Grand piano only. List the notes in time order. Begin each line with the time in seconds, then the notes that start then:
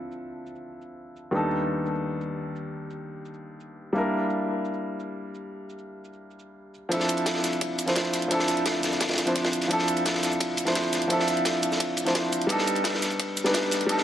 Already playing: F3 C4 D4 E4 A4
1.31 D#2 G3 B3 D4
1.35 D#4 A4
3.93 G3 A#3 D4 E4
3.98 A#4
6.89 F3 C4 D4 E4
6.94 A4
7.86 F3 C4 D4 E4 C5
8.28 F3 C4 D4
8.32 E4 A4
9.26 F3 C4 D4 E4 C5
9.68 F3 C4 D4
9.72 E4 A4
10.65 F3 C4 D4 E4 C5
11.08 F3 C4 D4
11.12 E4 A4
12.05 F3 C4 D4 E4 C5
12.47 G3 B3 D4
12.51 D#4 A4
13.44 G3 B3 D4 D#4 B4
13.86 G3 B3 D4 D#4
13.92 A4